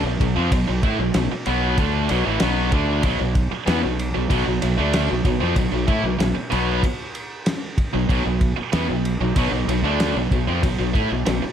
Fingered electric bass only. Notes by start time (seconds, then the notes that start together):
0.03 B1
0.20 B1
0.37 F2
0.51 B1
0.69 B1
0.83 A2
0.99 B1
1.15 B1
1.32 muted fingered electric bass stroke
1.47 B1
1.78 D2
2.11 B1
2.27 A1
2.42 B1
2.72 D2
3.04 B1
3.20 B1
3.52 muted fingered electric bass stroke
3.67 E2
3.85 B1
4.16 B1
4.30 B1
4.47 B1
4.63 B1
4.79 D2
5.11 B1
5.25 B1
5.43 F2
5.56 B1
5.72 B1
5.88 A2
6.03 B1
6.20 B1
6.37 muted fingered electric bass stroke
6.52 B1
7.95 B1
8.09 B1
8.26 B1
8.59 muted fingered electric bass stroke
8.73 E2
8.90 B1
9.20 B1
9.36 B1
9.52 B1
9.68 B1
9.82 D2
10.16 B1
10.31 B1
10.48 F2
10.63 B1
10.79 B1
10.94 A2
11.12 B1
11.27 B1
11.44 muted fingered electric bass stroke